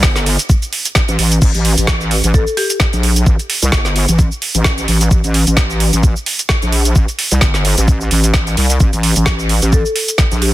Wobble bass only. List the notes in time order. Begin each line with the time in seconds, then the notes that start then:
0.03 G1
1.08 A1
1.19 A1
1.42 A1
1.55 A1
1.78 A1
2.24 A1
2.93 A#1
3.26 A1
3.62 C2
3.73 G1
4.09 A1
4.55 A1
4.88 A1
5.11 A1
5.24 A1
5.47 A1
5.93 A1
6.62 A#1
6.96 A1
7.32 C2
7.42 G1
7.78 A1
8.11 A1
8.57 C2
8.80 A1
8.93 A1
9.16 A1
9.62 A1
10.32 A#1